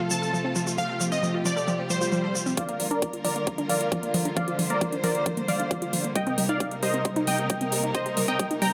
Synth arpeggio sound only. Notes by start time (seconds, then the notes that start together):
0.11 F3
0.22 A4
0.33 F3
0.45 C4
0.56 F3
0.67 F4
0.78 F3
0.89 A4
1.01 F3
1.12 C4
1.23 F3
1.34 F4
1.45 F3
1.56 A4
1.68 F3
1.79 C4
1.90 F3
2.01 F4
2.12 F3
2.24 A4
2.35 F3
2.46 C4
2.57 F3
2.69 A#3
2.80 F3
2.91 D4
3.02 F3
3.13 F4
3.25 F3
3.36 A#3
3.47 F3
3.58 D4
3.69 F3
3.81 F4
3.92 F3
4.03 A#3
4.14 F3
4.25 D4
4.37 F3
4.48 F4
4.59 F3
4.70 A#3
4.81 F3
4.93 D4
5.04 F3
5.15 F4
5.26 F3
5.37 A#3
5.48 F3
5.60 D4
5.71 F3
5.82 F4
5.93 F3
6.04 A#3
6.16 G3
6.27 C4
6.38 G3
6.49 D#4
6.60 G3
6.72 G4
6.83 G3
6.94 C4
7.05 G3
7.16 D#4
7.28 G3
7.39 G4
7.50 G3
7.61 C4
7.72 G3
7.84 D#4
7.95 G3
8.06 G4
8.17 G3
8.28 C4
8.40 G3
8.51 D#4
8.62 G3